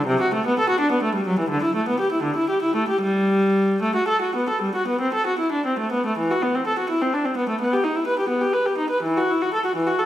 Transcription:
0.07 C3
0.21 F#4
0.34 A3
0.47 B3
0.59 A4
0.69 F#4
0.80 D4
0.92 B3
1.03 A3
1.15 G3
1.27 F#3
1.39 E3
1.50 D3
1.63 E4
1.76 A3
1.88 B3
2.00 G4
2.12 E4
2.23 D3
2.36 E4
2.50 G4
2.63 E4
2.76 A3
2.89 G4
3.02 G3
3.82 A3
3.96 F#4
4.08 A4
4.22 F#4
4.36 B3
4.49 A4
4.62 G3
4.75 F#4
4.88 B3
5.01 C4
5.14 A4
5.27 F#4
5.39 E4
5.52 D4
5.66 C4
5.79 A3
5.92 B3
6.06 A3
6.18 E3
6.31 F#4
6.42 B3
6.55 C4
6.67 A4
6.79 F#4
6.90 E4
7.02 C4
7.14 D4
7.25 C4
7.37 B3
7.49 A3
7.61 B3
7.73 G4
7.84 D#4
7.96 E4
8.07 B4
8.19 G4
8.29 B3
8.41 G4
8.54 B4
8.66 G4
8.78 D#4
8.90 B4
9.03 E3
9.17 F#4
9.30 E4
9.42 F#4
9.54 A4
9.65 F#4
9.76 E3
9.87 F#4
9.99 A4

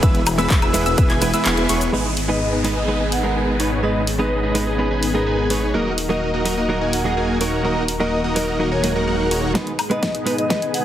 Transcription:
Already playing: E3 E4 G#4 B4
0.02 E1 G#3 B3 E4 G#4 B4 E5 E6, kick, closed hi-hat, shaker
0.15 closed hi-hat
0.26 E1, open hi-hat, ride, high woodblock, shaker
0.38 G#3 B3 E4 G#4 B4 E5 E6, closed hi-hat, shaker
0.50 E1, kick, clap, closed hi-hat, shaker
0.62 B3 E4 G#4 B4 E5 E6, closed hi-hat, high woodblock
0.73 E1 G#3 B3 E4 B4, open hi-hat, ride, shaker
0.86 B3 E4 G#4 B4 E5 E6, closed hi-hat, shaker
0.97 E1 G#3 B3 E4 G#4 B4 E5 E6, kick, closed hi-hat, shaker
1.10 B3 E4 G#4 B4 G#5 G#6, clap, closed hi-hat
1.21 E1 G#3 B3 E4 B4, open hi-hat, ride, shaker
1.33 G#3 B3 E4 G#4 B4 E5 E6, closed hi-hat, shaker
1.45 E1 B3 E4 G#4 B4 G#5 G#6, clap, closed hi-hat, shaker
1.57 G#3 B3 E4 B4, closed hi-hat
1.69 E1 B3 E4 G#4 B4 C#5 C#6, open hi-hat, ride, shaker
1.81 closed hi-hat, shaker
1.92 G#1 G#3 B3 D#4 G#4 B4 D#5, downlifter
2.17 open hi-hat
2.28 G#3 B3 D#4 G#4 B4 D#5
2.53 B3 D#4 G#4 B4 D#5
2.64 G#3 B3 D#4 B4, open hi-hat
2.76 B3 D#4 G#4 B4 D#5
2.88 G#3 B3 D#4 G#4 B4 D#5
3.00 B3 D#4 G#4 B4 G#5
3.12 F#5, open hi-hat
3.23 G#3 B3 D#4 G#4 A#4 B4 D#5 F#5
3.36 B3 D#4 G#4 B4 G#5
3.59 G#3 B3 D#4 G#4 B4 C#5, open hi-hat
3.83 G#3 B3 C#4 D#4 G#4 B4 D#5
4.07 open hi-hat
4.19 G#3 B3 D#4 G#4 B4 D#5
4.43 B3 D#4 G#4 B4 D#5
4.54 G#3 B3 D#4 B4, open hi-hat
4.67 B3 D#4 G#4 B4 D#5
4.78 G#3 B3 D#4 G#4 B4 D#5
4.91 B3 D#4 G#4 B4 G#5
5.03 open hi-hat
5.14 G#3 B3 D#4 G#4 A#4 B4 D#5
5.26 B3 D#4 G#4 B4 G#5
5.50 G#3 B3 D#4 G#4 B4 C#5, open hi-hat
5.73 D#1 D#3 F#3 A#3 D#4 F#4 A#4 D#5
5.98 open hi-hat
6.09 F#3 A#3 D#4 F#4 A#4 D#5
6.34 A#3 D#4 F#4 A#4 D#5
6.45 F#3 A#3 D#4 A#4, open hi-hat
6.57 A#3 D#4 F#4 A#4 D#5
6.69 F#3 A#3 D#4 F#4 A#4 D#5
6.81 A#3 D#4 F#4 A#4 G#5
6.93 F#5, open hi-hat
7.04 F#3 A#3 D#4 F#4 G#4 A#4 D#5 F#5
7.17 A#3 D#4 F#4 A#4 G#5
7.40 F#3 A#3 D#4 F#4 A#4 C#5, open hi-hat
7.64 F#3 A#3 D#4 F#4 A#4 D#5
7.88 open hi-hat
8.00 F#3 A#3 D#4 F#4 A#4 D#5
8.24 A#3 D#4 F#4 A#4 D#5
8.35 F#3 A#3 D#4 A#4 D#5, open hi-hat
8.48 A#3 D#4 F#4 A#4 D#5
8.59 F#3 A#3 D#4 F#4 A#4 D#5, swell
8.72 A#3 D#4 F#4 A#4 C#5 G#5
8.83 F#3 A#3 D#4 A#4, open hi-hat
8.95 F#3 A#3 D#4 F#4 A#4 F#5
9.07 A#3 D#4 F#4 A#4 F#5
9.19 F#3 A#3 D#4 A#4
9.31 A#3 D#4 F#4 A#4 C#5, open hi-hat
9.54 G#2 G#3 B3 D#4 G#4 B4 D#5, kick, snare, closed hi-hat, riser
9.67 closed hi-hat
9.79 open hi-hat, high woodblock
9.90 G#3 B3 D#4 G#4 B4 D#5, closed hi-hat
10.03 kick, snare, closed hi-hat
10.14 B3 D#4 G#4 B4 D#5, closed hi-hat
10.26 G#3 B3 D#4 B4, open hi-hat
10.38 B3 D#4 G#4 B4 D#5, closed hi-hat
10.50 G#3 B3 D#4 G#4 B4, kick, snare, closed hi-hat
10.62 B3 D#4 G#4 B4 G#5, closed hi-hat
10.74 F#5, open hi-hat

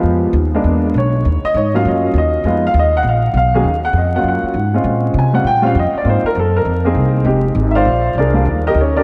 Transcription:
Already playing: F3 G#3 B3 F4
0.03 F2
0.33 D#2
0.54 G#3 A#3 B3 D4
0.64 E2
0.94 B1 C#5
1.25 D#2
1.44 D#5, muted upright bass stroke
1.54 G#2 C#5
1.74 F#3 A#3 C#4 F4 F5
1.85 F#2 D#5
2.14 D#2
2.18 D#5
2.44 F2 G#3 B3 D#4 F4
2.67 F5
2.74 D#2
2.79 D#5
2.97 F#5
3.03 A#1
3.09 F5
3.34 B1 F5
3.54 D#2 F#3 A#3 C#4 G#4
3.64 D#2
3.85 F#5
3.93 F2
3.98 D#5
4.16 F#3 A#3 C#4 F4 F#5
4.24 F#2
4.28 F#5
4.43 muted upright bass stroke
4.54 G#2
4.74 G#3 C4 C#4 F4
4.84 A#2
5.14 C3
5.18 G#5
5.33 G3 C4 C#4 F4 F#5
5.44 A#2 G5
5.62 G3 C4 C#4 F4
5.67 F5
5.75 F2
5.79 D#5
5.93 muted upright bass stroke
5.98 D5
6.04 G#2 A#3 C4 D#4 F4
6.09 C5
6.24 A#4, muted upright bass stroke
6.35 F#2
6.39 A4
6.56 A#4
6.65 F2
6.84 A#3 C4 D#4 G#4
6.95 C2
7.25 F1 G#3 C4 D#4 G4
7.55 G#1
7.71 E5 F5
7.76 F4 C5 D5
7.85 A#1
8.15 C2 D5
8.19 D4 G#4 A#4
8.34 G3 A#3 D4 F4
8.45 D#2
8.67 D#4 G4 A#4 D#5
8.74 D2
8.81 C#4 C#5
8.97 D4 G4 A#4 D5

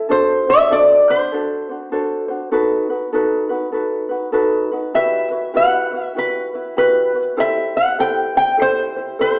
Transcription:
0.09 D4 F#4 A4 C5
0.47 D4 F#4 C5 E5
0.70 D4 F#4 A4 C5 D5
1.09 D4 F#4 C5
1.32 D4 F#4 A4 C5
1.69 D4 F#4 C5
1.92 D4 F#4 A4 C5
2.28 D4 F#4 C5
2.51 D#4 F#4 A4 B4
2.90 D#4 F#4 B4
3.13 D#4 F#4 A4 B4
3.49 D#4 F#4 B4
3.72 D#4 F#4 A4 B4
4.09 D#4 F#4 B4
4.32 D#4 F#4 A4 B4
4.72 D#4 F#4 B4
4.94 E4 F#4 G4 B4 E5
5.31 E4 F#4 B4
5.54 E4 F#4 G4 B4 F#5
5.92 E4 F#4 B4
6.04 E5
6.15 E4 F#4 G4 B4
6.53 E4 F#4 B4
6.77 E4 F#4 G4 B4
7.15 E4 F#4 B4
7.37 E4 G4 A4 C5 E5
7.76 E4 G4 C5 F#5
7.98 E4 G4 A4 C5 G5
8.35 E4 G4 C5 G5
8.57 E4 G4 A4 C5
8.62 C5
8.96 E4 G4 C5
9.19 E4 G4 A4 C5

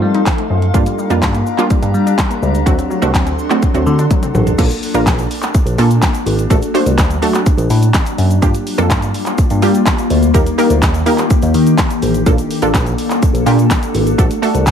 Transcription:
Already playing: A3 C4 D#4 F4 A4 F5 C6
0.02 G3
0.14 D#4, closed hi-hat
0.26 F3, kick, snare, clap, closed hi-hat
0.38 A3, closed hi-hat
0.50 F#2 F3
0.62 closed hi-hat
0.74 G2 G3 A#3 D4 F4 G4 A#5, kick, closed hi-hat, shaker
0.86 G3, closed hi-hat, shaker
0.99 G3, shaker
1.10 F2 G3 A#3 D4 F4, closed hi-hat, shaker
1.22 G2 G3, kick, snare, clap, closed hi-hat, shaker
1.34 A#3, closed hi-hat, shaker
1.47 shaker
1.58 G3 A#3 D4 F4, clap, closed hi-hat, shaker
1.70 G3, kick, closed hi-hat, shaker
1.82 G2 G3, closed hi-hat, shaker
1.94 G3, shaker
2.07 D4, closed hi-hat, shaker
2.18 G3, kick, snare, clap, closed hi-hat, shaker
2.30 A#3, closed hi-hat, shaker
2.42 C#2 G3, shaker
2.55 closed hi-hat, shaker
2.66 D2 F#3 A3 C4 D4 F#4 A4 F#5 C6, kick, closed hi-hat, shaker
2.78 F#3, closed hi-hat, shaker
2.90 F#3, shaker
3.02 C2 A3 C4 D4 F#4, closed hi-hat, shaker
3.14 D2 F#3, kick, snare, clap, closed hi-hat, shaker
3.27 C4, closed hi-hat, shaker
3.39 shaker
3.50 F#3 A3 C4 D4 F#4, clap, closed hi-hat, shaker
3.62 F#3, kick, closed hi-hat, shaker
3.74 D2 F#3 A3 C4 D4 F#4, closed hi-hat, shaker
3.86 D3, shaker
3.99 D4, closed hi-hat, shaker
4.11 F#3, kick, closed hi-hat, high tom, shaker
4.23 C4, closed hi-hat, mid tom, shaker
4.34 A1 F#3, mid tom, shaker
4.47 closed hi-hat, floor tom, shaker
4.58 A#1 A#3 D4 F4 A4, kick, closed hi-hat, crash, shaker
4.71 closed hi-hat, shaker
4.83 open hi-hat, shaker
4.94 A1 A#3 D4 F4 A#4, closed hi-hat, shaker
5.07 A#1, kick, snare, clap, closed hi-hat, shaker
5.19 closed hi-hat, shaker
5.31 open hi-hat, shaker
5.42 clap, closed hi-hat, shaker
5.54 kick, closed hi-hat, shaker
5.66 A#1, closed hi-hat, shaker
5.78 A#2 A#3 D4 F4 A4, open hi-hat, shaker
5.90 closed hi-hat, shaker
6.02 kick, snare, clap, closed hi-hat, shaker
6.14 closed hi-hat, shaker
6.26 G#1, open hi-hat, shaker
6.38 closed hi-hat, shaker
6.50 A1 F#3 A3 D4 F#4 A4, kick, closed hi-hat, shaker
6.62 closed hi-hat, shaker
6.74 A3 D4 F#4 C5, open hi-hat, shaker
6.86 C2, closed hi-hat, shaker
6.98 D2, kick, snare, clap, closed hi-hat, shaker
7.10 closed hi-hat, shaker
7.22 A3 D4 F#4 A4, open hi-hat, shaker
7.34 clap, closed hi-hat, shaker
7.46 kick, closed hi-hat, shaker
7.58 A1, closed hi-hat, shaker
7.70 A2, open hi-hat, shaker
7.82 closed hi-hat, shaker
7.94 kick, snare, clap, closed hi-hat, shaker
8.06 closed hi-hat, shaker
8.18 F#2, open hi-hat, shaker
8.30 closed hi-hat, shaker
8.42 G2 G3 A#3 D4 F4 G4, kick, closed hi-hat, shaker
8.54 closed hi-hat, shaker
8.67 open hi-hat, shaker
8.78 F2 A#3 D4 F4 A4, closed hi-hat, shaker
8.90 G2, kick, snare, clap, closed hi-hat, shaker
9.02 closed hi-hat, shaker
9.14 open hi-hat, shaker
9.26 clap, closed hi-hat, shaker
9.38 kick, closed hi-hat, shaker
9.50 G2, closed hi-hat, shaker
9.62 G3 A#3 D4 F4 G4, open hi-hat, shaker
9.75 closed hi-hat, shaker
9.86 kick, snare, clap, closed hi-hat, shaker
9.98 closed hi-hat, shaker
10.10 D2, open hi-hat, shaker
10.23 closed hi-hat, shaker
10.34 D#2 D#3 A#3 D#4 G4 A#4, kick, closed hi-hat, shaker
10.46 closed hi-hat, shaker
10.58 A#3 D#4 G4 A#4, open hi-hat, shaker
10.70 D2, closed hi-hat, shaker
10.82 D#2, kick, snare, clap, closed hi-hat, shaker
10.94 closed hi-hat, shaker
11.06 A#3 D#4 G4 A#4, open hi-hat, shaker
11.18 clap, closed hi-hat, shaker
11.30 kick, closed hi-hat, shaker
11.42 D#2, closed hi-hat, shaker
11.54 D#3, open hi-hat, shaker
11.67 closed hi-hat, shaker
11.78 kick, snare, clap, closed hi-hat, shaker
11.90 closed hi-hat, shaker
12.02 A1, open hi-hat, shaker
12.14 closed hi-hat, shaker
12.26 A#1 A#3 D4 F4 A4, kick, closed hi-hat, shaker
12.38 closed hi-hat, shaker
12.51 open hi-hat, shaker
12.62 A1 A#3 D4 F4 A4, closed hi-hat, shaker
12.74 A#1, kick, snare, clap, closed hi-hat, shaker
12.86 closed hi-hat, shaker
12.98 open hi-hat, shaker
13.10 clap, closed hi-hat, shaker
13.22 kick, closed hi-hat, shaker
13.34 A#1, closed hi-hat, shaker
13.46 A#2 A#3 D4 F4 G4, open hi-hat, shaker
13.59 closed hi-hat, shaker
13.71 kick, snare, clap, closed hi-hat, shaker
13.83 closed hi-hat, shaker
13.95 G#1, open hi-hat, shaker
14.07 closed hi-hat, shaker
14.18 A1 F#3 A3 D4 F#4 A4, kick, closed hi-hat, shaker
14.31 closed hi-hat, shaker
14.42 A3 D4 F#4 A4, open hi-hat, shaker
14.54 C2, closed hi-hat, shaker
14.66 D2, kick, clap, closed hi-hat, shaker

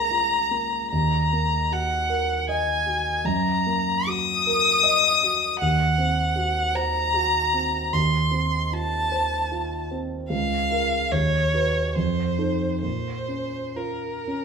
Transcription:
Already playing: C#2 A#3 F4 A#4 A#5
0.10 F4
0.51 A#3
0.91 D#2 A#5
1.33 A#3
1.71 F#4 F#5
2.09 A#4
2.49 D#5 G#5
2.87 F#4
3.25 F#2 A#5
3.67 A#3
4.07 F#4 D#6
4.46 A#4
4.83 D#5
5.23 F#4
5.61 D#2 F#5
5.98 C4
6.36 F#4
6.75 C5 A#5
7.14 F#4
7.53 C4
7.93 D#2 C6
8.31 C4
8.72 F4 A5
9.12 C5
9.51 F4
9.91 C4
10.30 C#2 F5
10.70 F4 A#4
11.11 D#2 C#5
11.54 F#4 B4
11.95 F2 C5
12.38 D#4 A4
12.82 A#2 C5
13.28 C#4
13.76 F4 A#4
14.28 C#4

